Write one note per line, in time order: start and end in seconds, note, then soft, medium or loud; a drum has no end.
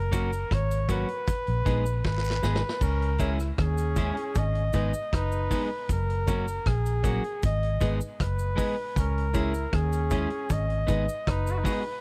0.00 0.43 F#1 loud
0.00 0.54 A#4 loud
0.12 0.30 F#3 medium
0.12 0.30 A#3 medium
0.12 0.27 C#4 medium
0.12 0.30 C#4 medium
0.12 0.30 F#4 medium
0.12 0.28 F#4 medium
0.12 0.28 A#4 loud
0.12 kick medium
0.12 closed hi-hat medium
0.12 cabasa medium
0.33 closed hi-hat soft
0.33 cabasa medium
0.51 1.03 G#1 loud
0.51 0.91 C#5 loud
0.51 kick loud
0.51 cross-stick loud
0.51 closed hi-hat medium
0.71 closed hi-hat medium
0.71 cabasa medium
0.88 1.07 F#3 medium
0.88 1.07 A#3 medium
0.88 1.04 C#4 medium
0.88 1.07 C#4 medium
0.88 1.04 F#4 medium
0.88 1.08 F#4 medium
0.88 1.05 A#4 loud
0.88 2.02 B4 loud
0.88 kick medium
0.88 closed hi-hat medium
0.88 cabasa medium
1.08 1.17 F#4 soft
1.08 1.17 A#4 soft
1.08 closed hi-hat medium
1.27 kick loud
1.27 closed hi-hat medium
1.27 cabasa medium
1.47 1.65 A#1 medium
1.47 closed hi-hat soft
1.65 2.01 A#1 medium
1.65 1.84 G#3 medium
1.65 1.84 B3 loud
1.65 1.81 D#4 loud
1.65 1.84 D#4 loud
1.65 1.84 G#4 medium
1.65 1.82 G#4 medium
1.65 1.82 B4 loud
1.65 kick medium
1.65 closed hi-hat medium
1.65 cabasa soft
1.86 cabasa medium
2.04 2.40 G#1 medium
2.04 2.84 B4 loud
2.04 kick loud
2.04 snare medium
2.04 long guiro medium
2.18 snare medium
2.24 cabasa medium
2.30 snare medium
2.42 2.61 G#1 loud
2.42 2.61 G#3 medium
2.42 2.61 B3 medium
2.42 2.58 D#4 medium
2.42 2.61 D#4 loud
2.42 2.58 G#4 medium
2.42 2.61 G#4 loud
2.42 2.59 B4 loud
2.42 snare medium
2.42 cabasa medium
2.56 snare loud
2.69 snare loud
2.81 3.50 C#2 loud
2.81 3.12 C#4 loud
2.81 3.32 A#4 loud
2.81 kick loud
2.81 crash medium
2.81 cabasa medium
3.02 closed hi-hat medium
3.18 3.37 G#3 medium
3.18 3.38 C#4 loud
3.18 3.35 E4 loud
3.18 3.51 E4 loud
3.18 3.38 E4 medium
3.18 3.35 G#4 medium
3.18 3.38 G#4 medium
3.18 3.35 C#5 loud
3.18 kick loud
3.18 closed hi-hat medium
3.18 cabasa medium
3.39 cross-stick medium
3.39 closed hi-hat soft
3.39 cabasa medium
3.58 4.11 D#2 medium
3.58 4.70 C#4 loud
3.58 4.40 G#4 loud
3.58 kick loud
3.58 cross-stick loud
3.58 closed hi-hat medium
3.78 closed hi-hat medium
3.78 cabasa medium
3.96 4.15 G#3 medium
3.96 4.15 C#4 medium
3.96 4.12 E4 medium
3.96 4.15 E4 medium
3.96 4.12 G#4 medium
3.96 4.15 G#4 medium
3.96 4.12 C#5 medium
3.96 kick loud
3.96 closed hi-hat medium
3.96 cabasa medium
4.16 4.24 G#4 soft
4.16 4.24 C#5 soft
4.16 muted clean electric guitar stroke soft
4.16 closed hi-hat medium
4.35 4.70 G#1 loud
4.35 5.16 D#5 loud
4.35 kick loud
4.35 closed hi-hat medium
4.35 cabasa medium
4.55 closed hi-hat soft
4.73 4.92 G#1 medium
4.73 4.92 G#3 medium
4.73 4.92 B3 medium
4.73 4.89 D#4 loud
4.73 4.92 D#4 medium
4.73 4.89 G#4 medium
4.73 4.92 G#4 medium
4.73 4.89 B4 loud
4.73 kick loud
4.73 closed hi-hat medium
4.73 cabasa medium
4.94 cabasa medium
5.13 5.47 F#1 medium
5.13 5.67 D#4 loud
5.13 5.90 B4 loud
5.13 kick loud
5.13 cross-stick loud
5.13 closed hi-hat loud
5.31 5.39 G#4 soft
5.31 5.39 B4 soft
5.31 cabasa medium
5.50 5.68 G#3 medium
5.50 5.69 B3 loud
5.50 5.65 D#4 medium
5.50 5.69 D#4 loud
5.50 5.66 G#4 medium
5.50 5.69 G#4 loud
5.50 5.66 B4 medium
5.50 kick loud
5.50 open hi-hat medium
5.50 cabasa medium
5.89 6.58 F#1 medium
5.89 6.69 A#4 loud
5.89 kick loud
5.89 closed hi-hat medium
5.89 cabasa medium
6.10 closed hi-hat medium
6.27 6.45 F#3 medium
6.27 6.45 A#3 medium
6.27 6.42 C#4 loud
6.27 6.45 C#4 medium
6.27 6.43 F#4 medium
6.27 6.45 F#4 medium
6.27 6.43 A#4 loud
6.27 kick loud
6.27 closed hi-hat medium
6.27 cabasa medium
6.48 closed hi-hat soft
6.48 cabasa medium
6.66 7.18 A#1 medium
6.66 7.44 G#4 loud
6.66 kick loud
6.66 cross-stick loud
6.66 closed hi-hat medium
6.86 closed hi-hat medium
6.86 cabasa medium
7.03 7.22 F#3 medium
7.03 7.22 A#3 medium
7.03 7.19 C#4 medium
7.03 7.22 C#4 medium
7.03 7.19 F#4 medium
7.03 7.22 F#4 medium
7.03 7.19 A#4 loud
7.03 kick medium
7.03 closed hi-hat medium
7.03 cabasa medium
7.24 closed hi-hat medium
7.43 7.78 G#1 loud
7.43 7.91 D#5 loud
7.43 kick loud
7.43 closed hi-hat medium
7.43 cabasa medium
7.63 closed hi-hat soft
7.80 7.99 G#1 medium
7.80 7.98 G#3 medium
7.80 7.99 B3 loud
7.80 7.96 D#4 loud
7.80 7.99 D#4 loud
7.80 7.96 G#4 loud
7.80 7.99 G#4 loud
7.80 7.97 B4 loud
7.80 kick loud
7.80 closed hi-hat medium
7.80 cabasa medium
8.01 cabasa medium
8.20 8.55 F#1 medium
8.20 9.01 B4 loud
8.20 kick loud
8.20 cross-stick loud
8.20 closed hi-hat medium
8.39 cabasa medium
8.56 8.75 G#3 medium
8.56 8.75 B3 medium
8.56 8.72 D#4 medium
8.56 8.75 D#4 loud
8.56 8.73 G#4 medium
8.56 8.75 G#4 medium
8.56 8.73 B4 medium
8.56 kick loud
8.56 open hi-hat medium
8.56 cabasa medium
8.96 9.65 C#2 loud
8.96 9.27 C#4 loud
8.96 9.76 A#4 medium
8.96 kick loud
8.96 closed hi-hat loud
8.96 cabasa medium
9.18 closed hi-hat medium
9.33 9.52 G#3 medium
9.33 9.52 C#4 loud
9.33 9.49 E4 medium
9.33 9.65 E4 loud
9.33 9.53 E4 medium
9.33 9.49 G#4 medium
9.33 9.53 G#4 medium
9.33 9.50 C#5 loud
9.33 kick loud
9.33 closed hi-hat medium
9.33 cabasa medium
9.54 closed hi-hat soft
9.54 cabasa medium
9.71 10.25 D#2 loud
9.71 10.84 C#4 loud
9.71 10.54 G#4 loud
9.71 kick loud
9.71 cross-stick loud
9.71 closed hi-hat medium
9.93 closed hi-hat medium
9.93 cabasa medium
10.10 10.29 G#3 medium
10.10 10.29 C#4 medium
10.10 10.26 E4 medium
10.10 10.29 E4 medium
10.10 10.26 G#4 medium
10.10 10.29 G#4 loud
10.10 10.27 C#5 loud
10.10 kick medium
10.10 closed hi-hat medium
10.10 cabasa medium
10.30 10.39 G#4 soft
10.30 10.39 C#5 soft
10.30 muted clean electric guitar stroke medium
10.30 closed hi-hat medium
10.49 10.85 G#1 loud
10.49 11.31 D#5 loud
10.49 kick loud
10.49 closed hi-hat medium
10.49 cabasa medium
10.70 closed hi-hat medium
10.87 11.06 G#1 medium
10.87 11.05 G#3 medium
10.87 11.05 B3 medium
10.87 11.06 D#4 medium
10.87 11.03 D#4 loud
10.87 11.06 G#4 medium
10.87 11.03 G#4 medium
10.87 11.04 B4 loud
10.87 kick medium
10.87 closed hi-hat medium
10.87 cabasa medium
11.09 cabasa medium
11.27 11.62 F#1 medium
11.27 11.82 D#4 loud
11.27 12.01 B4 medium
11.27 kick loud
11.27 cross-stick loud
11.27 closed hi-hat loud
11.47 11.54 G#4 soft
11.47 11.54 B4 soft
11.47 cabasa medium
11.64 11.82 G#3 medium
11.64 11.82 B3 medium
11.64 11.83 D#4 loud
11.64 11.80 D#4 medium
11.64 11.83 G#4 loud
11.64 11.81 G#4 medium
11.64 11.81 B4 medium
11.64 kick loud
11.64 open hi-hat medium
11.64 cabasa medium